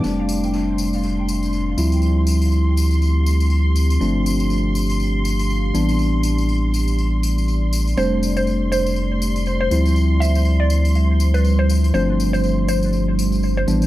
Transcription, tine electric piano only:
X:1
M:4/4
L:1/8
Q:"Swing 16ths" 1/4=121
K:Ddor
V:1 name="Tine electric piano"
[G,A,CD]6- [G,A,CD] [F,G,CE]- | [F,G,CE]8 | [F,A,CD]6- [F,A,CD] [E,G,B,D]- | [E,G,B,D]8 |
[G,A,CD]6- [G,A,CD] [F,G,CE]- | [F,G,CE]8 | [F,A,CD]6- [F,A,CD] [E,G,B,D] |]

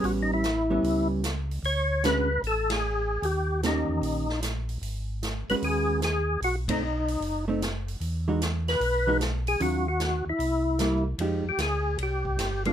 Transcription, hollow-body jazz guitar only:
X:1
M:4/4
L:1/8
Q:"Swing" 1/4=151
K:D#phr
V:1 name="Hollow-body jazz guitar"
[=G,B,C]2 z [G,B,C]3 z2 | z2 [=D,G,CF] z4 z | z2 [D,A,C=G]3 z3 | z3 [G,CFB]3 z2 |
z [=A,=CD] z3 [A,CD] z2 | z [E,G,DF] z3 [E,G,DF] z2 | [D,F,C^E] z4 z [=G,_B,=E] z | [K:Fdor] [F,A,EG] z6 [A,=B,D] |]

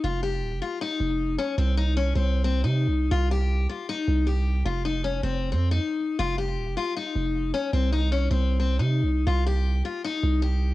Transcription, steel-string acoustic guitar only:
X:1
M:4/4
L:1/16
Q:1/4=156
K:Cphr
V:1 name="Steel-string acoustic guitar"
F2 G4 F2 E6 D2 | C2 E2 D2 C3 C2 E4- E | F2 G4 F2 E4 G4 | F2 E2 D2 C3 C2 E4- E |
F2 G4 F2 E6 D2 | C2 E2 D2 C3 C2 E4- E | F2 G4 F2 E4 G4 |]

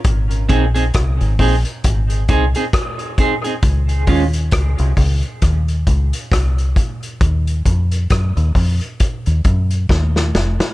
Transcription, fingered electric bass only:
X:1
M:4/4
L:1/16
Q:"Swing 16ths" 1/4=67
K:Abmix
V:1 name="Fingered electric bass" clef=bass
A,,,2 B,,,2 C,, A,,, B,,, z A,,,2 C,, z4 z | D,,2 E,,2 D,, C,, D,, z E,,2 D,, z C,,2 z2 | E,,2 F,,2 G,, E,, F,, z2 E,, G,,2 E,,2 F,,, z |]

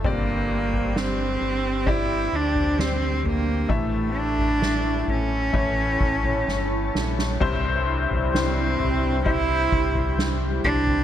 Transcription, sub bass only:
X:1
M:4/4
L:1/16
Q:1/4=65
K:Cmix
V:1 name="Sub bass" clef=bass
G,,,6 G,,,4 D,,6 | A,,,6 A,,,2 A,,,2 A,,,2 G,,,2 B,,,2 | C,,3 C,,3 C,,4 C,,4 C,,2 |]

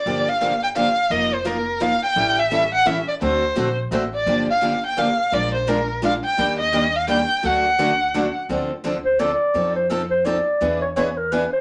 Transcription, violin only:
X:1
M:3/4
L:1/8
Q:"Swing" 1/4=171
K:Gm
V:1 name="Violin"
d f2 g f2 | e c B2 f g- | g =e2 ^f e d | c3 z c d- |
d f2 g f2 | d c B2 f g- | g e2 f g2 | ^f4- f z |
[K:Dm] z6 | z6 | z6 |]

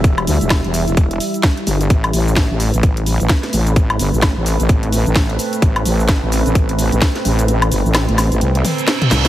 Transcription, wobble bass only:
X:1
M:4/4
L:1/16
Q:"Swing 16ths" 1/4=129
K:Ador
V:1 name="Wobble bass" clef=bass
E,,,2 D,, E,,,2 E,,,2 E,,, E,,,2 z4 G,,,2 | A,,,2 A,,,3 A,,,2 A,,, A,,,3 A,,, z2 A,,,2- | A,,,2 G,,, A,,,2 A,,,2 A,,, A,,,3 A,,, A,,,2 z2 | A,,,2 A,,,3 A,,,2 A,,, A,,,3 A,,, z2 A,,,2- |
A,,,2 G,,, A,,,2 A,,,2 A,,, C,,2 z4 C,,2 |]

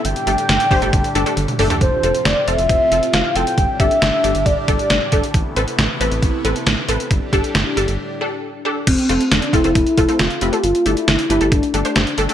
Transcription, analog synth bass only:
X:1
M:4/4
L:1/16
Q:1/4=136
K:Gmix
V:1 name="Analog synth bass" clef=bass
G,,, z G,,, z G,,, z G,,, G,,, G,,, z G,,, z G,,, z G,,, z | F,,, z F,,, z F,,, z F,,, F,,, F,,, z F,,, z F,,, z F,,, z | G,,, z G,,, z G,,, z G,,, G,,, G,,, z G,,, z G,,, z G,,, z | A,,, z A,,, z A,,, z A,,, A,,, A,,, z A,,, z A,,, z A,,, z |
G,,, z G,,, z G,,, z G,,, G,,, z8 | F,,, z F,,, z F,,, z F,,, F,,, F,,, z F,,, z F,,, z F,,, z | G,,, z G,,, z G,,, z G,,, G,,, G,,, z G,,, z G,,, z G,,, z |]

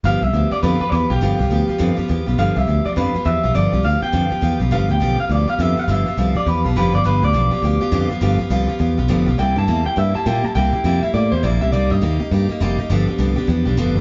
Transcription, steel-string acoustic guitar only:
X:1
M:4/4
L:1/8
Q:"Swing" 1/4=205
K:Gmix
V:1 name="Steel-string acoustic guitar"
[G,,D,F,B,FG] [F,B,FG] [F,B,FG] [F,B,FG] [G,,D,F,B,FG] [F,B,FG] [F,B,FG] [F,B,FG] | [G,,D,F,B,FG] [F,B,FG] [F,B,FG] [F,B,FG] [G,,D,F,B,FG] [F,B,FG] [F,B,FG] [F,B,FG] | [G,,D,F,B,FG] [F,B,FG] [F,B,FG] [F,B,FG] [G,,D,F,B,FG] [F,B,FG] [F,B,FG] [F,B,FG] | [G,,D,F,B,FG] [F,B,FG] [F,B,FG] [F,B,FG] [G,,D,F,B,FG] [F,B,FG] [F,B,FG] [F,B,FG] |
[G,,D,F,B,FG] [F,B,FG] [G,,D,F,B,FG] [F,B,FG] [F,B,FG] [F,B,FG] [G,,D,F,B,FG] [F,B,FG] | [G,,D,F,B,FG] [F,B,FG] [G,,D,F,B,FG] [F,B,FG] [F,B,FG] [F,B,FG] [G,,D,F,B,FG] [F,B,FG] | [G,,D,F,B,FG] [F,B,FG] [G,,D,F,B,FG] [F,B,FG] [F,B,FG] [F,B,FG] [G,,D,F,B,FG] [F,B,FG] | [G,,D,F,B,FG] [F,B,FG] [G,,D,F,B,FG] [F,B,FG] [F,B,FG] [F,B,FG] [G,,D,F,B,FG] [F,B,FG] |
[C,G,_B,EG] [B,EG] [C,G,B,EG] [B,EG] [G,B,EG] [B,EG] [C,G,B,EG] [B,EG] | [C,G,_B,EG] [B,EG] [C,G,B,EG] [B,EG] [G,B,EG] [B,EG] [C,G,B,EG] [B,EG] | [C,G,_B,_EG] [B,EG] [C,G,B,EG] [B,EG] [G,B,EG] [B,EG] [C,G,B,EG] [B,EG] | [G,,D,F,B,DG] [F,B,DG] [G,,D,F,B,DG] [F,B,DG] [F,B,DG] [F,B,DG] [G,,D,F,B,DG] [B,DG] |]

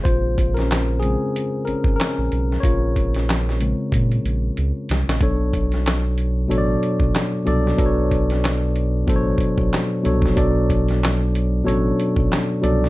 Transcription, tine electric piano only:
X:1
M:4/4
L:1/16
Q:"Swing 16ths" 1/4=93
K:Bm
V:1 name="Tine electric piano"
[^E^B]3 [C^A]3 ^G4 [CA]2 [CA]4 | [^Ec]6 z8 z2 | [B,,F,DAc]6 z2 [B,,F,DAcd]4 z2 [B,,F,DAd]2 | [B,,F,DABc]6 z2 [B,,F,DA=c^c]4 z2 [B,,F,DAc]2 |
[B,,F,DAd]6 z2 [B,,F,CDAc]4 z2 [B,,F,DAd]2 |]
V:2 name="Tine electric piano" clef=bass
z6 [C,^G,^B,]6 z4 | z6 [C,^G,^B,]6 z4 | z16 | z16 |
z16 |]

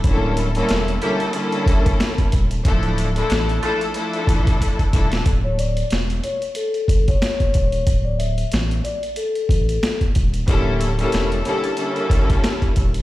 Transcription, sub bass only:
X:1
M:4/4
L:1/8
Q:"Swing 16ths" 1/4=92
K:Aphr
V:1 name="Sub bass" clef=bass
D,,,2 E,,, z2 G,,, z _E,,, | D,,,2 A,,, z2 A,,, z _E,,, | D,,,2 E,,, z2 G,,, z _E,,, | D,,,2 A,,, z2 A,,, z _E,,, |
D,,,2 E,,, z2 G,,, z _E,,, |]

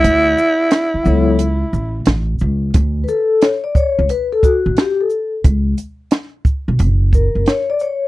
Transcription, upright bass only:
X:1
M:4/4
L:1/16
Q:"Swing 16ths" 1/4=89
K:D
V:1 name="Upright bass" clef=bass
D,,2 z4 C,,4 A,,,2 A,,,2 C,,2 | D,,2 z4 z C,, z3 A,,, z4 | C,,2 z4 z B,,, F,,,3 F,,, z4 |]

